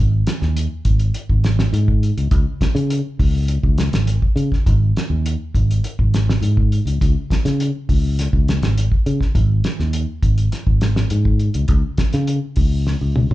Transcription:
0.00 0.22 G#1 loud
0.27 snare medium
0.27 closed hi-hat medium
0.42 0.66 D#2 medium
0.42 snare soft
0.57 closed hi-hat medium
0.85 1.10 G#1 medium
0.85 kick medium
0.85 closed hi-hat medium
0.99 closed hi-hat soft
1.14 closed hi-hat medium
1.29 1.67 G#1 medium
1.29 kick medium
1.44 snare medium
1.44 closed hi-hat soft
1.59 snare medium
1.73 2.10 G#2 medium
1.73 closed hi-hat medium
1.88 kick medium
2.03 closed hi-hat medium
2.17 2.30 C#2 medium
2.17 closed hi-hat soft
2.31 2.44 C#2 loud
2.31 kick loud
2.31 closed hi-hat medium
2.61 muted fingered electric bass stroke soft
2.61 kick medium
2.61 snare medium
2.61 closed hi-hat medium
2.75 3.00 C#3 loud
2.75 closed hi-hat medium
2.90 closed hi-hat medium
3.19 3.57 C#2 medium
3.19 kick medium
3.19 open hi-hat medium
3.48 closed hi-hat medium
3.63 3.88 C#2 medium
3.63 kick medium
3.78 snare medium
3.78 closed hi-hat medium
3.93 4.18 G#1 medium
3.93 snare medium
3.93 closed hi-hat medium
4.07 closed hi-hat medium
4.22 kick medium
4.36 4.49 C#3 medium
4.36 closed hi-hat medium
4.52 kick medium
4.52 snare soft
4.66 4.91 G#1 loud
4.66 kick loud
4.66 closed hi-hat medium
4.97 snare medium
4.97 closed hi-hat medium
5.10 5.35 D#2 medium
5.26 closed hi-hat medium
5.55 5.79 G#1 medium
5.55 kick medium
5.55 closed hi-hat medium
5.71 closed hi-hat soft
5.84 closed hi-hat medium
5.99 6.36 G#1 medium
5.99 kick medium
6.14 snare medium
6.14 closed hi-hat medium
6.29 snare medium
6.42 6.79 G#2 medium
6.42 closed hi-hat medium
6.57 kick medium
6.72 closed hi-hat soft
6.85 6.98 C#2 medium
6.85 closed hi-hat medium
7.01 7.14 C#2 loud
7.01 kick medium
7.01 closed hi-hat medium
7.30 muted fingered electric bass stroke soft
7.30 kick medium
7.30 snare medium
7.30 closed hi-hat medium
7.45 7.70 C#3 loud
7.45 snare soft
7.45 closed hi-hat medium
7.60 closed hi-hat medium
7.89 8.26 C#2 medium
7.89 kick medium
7.89 open hi-hat medium
8.19 snare soft
8.19 closed hi-hat medium
8.33 8.58 C#2 medium
8.33 kick medium
8.48 snare medium
8.48 closed hi-hat medium
8.62 8.87 G#1 medium
8.62 snare medium
8.62 closed hi-hat medium
8.78 closed hi-hat medium
8.92 kick medium
9.06 9.19 C#3 medium
9.06 closed hi-hat medium
9.21 kick medium
9.21 snare soft
9.35 9.60 G#1 loud
9.35 kick loud
9.35 closed hi-hat medium
9.64 snare medium
9.64 closed hi-hat medium
9.80 10.04 D#2 medium
9.80 snare soft
9.93 closed hi-hat medium
10.22 10.48 G#1 medium
10.22 kick medium
10.22 closed hi-hat medium
10.38 closed hi-hat soft
10.52 snare soft
10.52 closed hi-hat medium
10.67 11.04 G#1 medium
10.67 kick medium
10.81 snare medium
10.81 closed hi-hat medium
10.96 snare medium
11.10 11.48 G#2 medium
11.10 closed hi-hat medium
11.25 kick medium
11.39 closed hi-hat soft
11.54 11.67 C#2 medium
11.54 closed hi-hat soft
11.68 11.81 C#2 loud
11.68 kick medium
11.68 closed hi-hat medium
11.97 muted fingered electric bass stroke soft
11.97 kick medium
11.97 snare medium
11.97 closed hi-hat medium
12.13 12.38 C#3 loud
12.13 snare soft
12.13 closed hi-hat medium
12.27 closed hi-hat medium
12.56 12.94 C#2 medium
12.56 kick medium
12.56 open hi-hat medium
12.87 snare soft
13.01 13.26 C#2 medium
13.16 mid tom medium
13.30 13.34 G#1 medium
13.30 mid tom medium

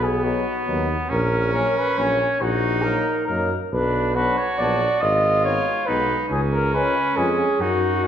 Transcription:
0.00 0.37 B1 medium
0.00 1.11 B3 medium
0.00 0.26 G#4 medium
0.23 0.45 F#3 medium
0.23 0.45 B3 medium
0.23 0.45 D#4 medium
0.23 0.91 F#4 medium
0.67 0.96 D#2 medium
0.67 0.88 F#3 medium
0.67 0.88 B3 medium
0.67 0.89 D#4 medium
1.09 1.67 A#1 loud
1.09 2.40 C#4 loud
1.09 1.52 A#4 medium
1.53 1.74 F#3 medium
1.53 1.75 A#3 medium
1.53 1.75 C#4 medium
1.53 1.80 A#4 medium
1.79 2.00 B4 medium
1.97 2.26 A#1 medium
1.97 2.18 F#3 medium
1.97 2.18 A#3 medium
1.97 2.19 C#4 medium
1.97 2.44 C#5 medium
2.40 2.98 A#1 medium
2.40 3.48 D#4 medium
2.40 2.84 F#4 medium
2.83 3.05 F#3 medium
2.83 3.05 A#3 medium
2.83 3.06 D#4 medium
2.83 3.27 A#4 medium
3.27 3.58 F#2 medium
3.27 3.50 F#3 medium
3.27 3.50 A#3 medium
3.27 3.50 D#4 medium
3.27 3.59 A#4 medium
3.72 4.29 B1 medium
3.72 4.16 D4 medium
3.72 4.14 B4 medium
4.15 4.36 F#3 medium
4.15 4.37 B3 soft
4.15 4.37 D4 medium
4.15 5.03 F#4 medium
4.15 4.39 B4 medium
4.38 4.60 C#5 medium
4.58 4.87 A#1 medium
4.58 4.80 F#3 medium
4.58 4.80 B3 medium
4.58 4.81 D4 medium
4.58 5.02 D5 medium
5.01 5.58 G#1 loud
5.01 5.89 F4 medium
5.01 5.44 D#5 loud
5.44 5.65 G#3 medium
5.44 5.66 B3 medium
5.44 5.66 D#4 medium
5.44 5.87 C#5 loud
5.86 6.16 B1 medium
5.86 6.08 G#3 medium
5.86 6.08 B3 medium
5.86 6.28 D#4 medium
5.86 6.09 D#4 medium
5.86 6.20 B4 medium
6.29 6.87 C#2 loud
6.29 7.62 C#4 medium
6.29 6.41 G#4 medium
6.54 6.73 A#4 medium
6.73 6.94 G#3 medium
6.73 6.94 C#4 soft
6.73 6.94 F4 medium
6.73 7.18 B4 medium
7.16 7.45 F2 medium
7.16 7.37 G#3 medium
7.16 7.38 C#4 medium
7.16 7.38 F4 medium
7.16 7.63 G#4 medium
7.60 8.07 F#2 medium
7.60 8.06 D#4 medium
7.60 8.07 F#4 medium
8.02 8.07 A#3 medium
8.02 8.07 C#4 medium
8.02 8.07 F#4 medium

